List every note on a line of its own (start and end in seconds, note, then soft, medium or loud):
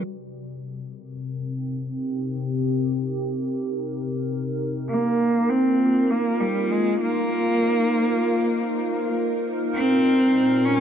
0.04 4.89 C3 medium
0.46 10.80 A#4 medium
0.70 5.93 C4 medium
1.12 6.31 G4 medium
1.16 10.80 D#4 medium
4.89 5.51 A#3 loud
4.89 9.74 A#3 medium
5.19 10.80 F4 medium
5.50 6.12 C4 loud
6.10 6.42 A#3 loud
6.41 6.73 G3 medium
6.71 7.01 G#3 medium
7.01 9.09 A#3 loud
7.09 10.80 C5 medium
9.74 10.80 A#2 medium
9.74 10.66 C4 loud
10.12 10.80 G3 medium
10.65 10.80 C#4 loud